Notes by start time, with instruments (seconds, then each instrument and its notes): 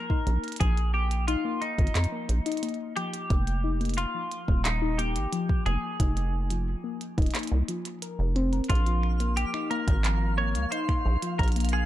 Already playing: clean electric guitar A#4
0.10 synth pluck D#4, kick
0.27 acid bass A#1, synth pluck A#3, closed hi-hat
0.44 closed hi-hat
0.48 closed hi-hat
0.52 closed hi-hat
0.56 clean electric guitar G#4, closed hi-hat
0.60 acid bass A#1, synth pluck F3, kick, closed hi-hat
0.77 closed hi-hat
0.94 synth pluck A#3, clean electric guitar G4
1.11 closed hi-hat
1.28 synth pluck D#4, clean electric guitar F4, closed hi-hat
1.45 synth pluck A#3
1.61 clean electric guitar D#4, closed hi-hat
1.78 acid bass G#1, synth pluck F3, kick, closed hi-hat
1.87 closed hi-hat
1.95 acid bass F2, clap, closed hi-hat
2.04 closed hi-hat
2.12 synth pluck A#3
2.29 acid bass A#1, closed hi-hat
2.46 synth pluck D#4, closed hi-hat
2.52 closed hi-hat
2.57 closed hi-hat
2.63 synth pluck A#3, closed hi-hat
2.69 closed hi-hat
2.74 closed hi-hat
2.96 synth pluck F3, clean electric guitar G4, closed hi-hat
3.13 closed hi-hat
3.30 acid bass F1, synth pluck A#3, kick, closed hi-hat
3.47 closed hi-hat
3.64 synth pluck D#4
3.81 synth pluck A#3, closed hi-hat
3.85 closed hi-hat
3.89 closed hi-hat
3.94 clean electric guitar F4, closed hi-hat
3.98 closed hi-hat
4.14 synth pluck F3
4.32 closed hi-hat
4.48 acid bass D#1, synth pluck A#3, kick
4.65 clean electric guitar D#4, clap, closed hi-hat
4.82 synth pluck D#4
4.98 synth pluck A#3, clean electric guitar G4, closed hi-hat
5.16 acid bass G#1, closed hi-hat
5.32 synth pluck F3, closed hi-hat
5.49 kick
5.66 acid bass F1, synth pluck A#3, clean electric guitar G#4, closed hi-hat
6.00 acid bass F1, synth pluck D#4, kick, closed hi-hat
6.17 synth pluck A#3, closed hi-hat
6.50 synth pluck F3, closed hi-hat
6.84 synth pluck A#3
7.01 closed hi-hat
7.18 acid bass D#1, synth pluck D#4, kick, closed hi-hat
7.22 closed hi-hat
7.26 closed hi-hat
7.31 closed hi-hat
7.35 synth pluck A#3, clap, closed hi-hat
7.39 closed hi-hat
7.43 closed hi-hat
7.47 closed hi-hat
7.52 acid bass C2
7.68 synth pluck F3, closed hi-hat
7.85 closed hi-hat
8.02 synth pluck A#4, closed hi-hat
8.19 acid bass F1
8.36 synth pluck C4, closed hi-hat
8.53 synth pluck A#4, closed hi-hat
8.64 closed hi-hat
8.69 acid bass A#1, clean electric guitar F4, synth texture F5, kick, closed hi-hat
8.75 closed hi-hat
8.86 synth pluck F3, closed hi-hat
9.03 finger snap
9.20 synth pluck A#3, closed hi-hat
9.37 clean electric guitar G4, closed hi-hat
9.54 synth pluck D#4, finger snap
9.71 synth pluck A#3, clean electric guitar A#4, closed hi-hat
9.87 acid bass G#1, kick, closed hi-hat
10.04 synth pluck F3, clap, closed hi-hat
10.38 synth pluck A#3, clean electric guitar C#5
10.55 acid bass C#2, closed hi-hat
10.71 synth pluck D#4, clean electric guitar C5, closed hi-hat
10.89 synth pluck A#3, finger snap, kick
11.06 acid bass A#1
11.22 synth pluck F3, closed hi-hat
11.39 acid bass A#1, clean electric guitar A#4, kick, closed hi-hat
11.43 closed hi-hat
11.48 closed hi-hat
11.52 closed hi-hat
11.56 synth pluck A#3, closed hi-hat
11.60 closed hi-hat
11.65 closed hi-hat
11.69 closed hi-hat
11.73 clean electric guitar G#4, finger snap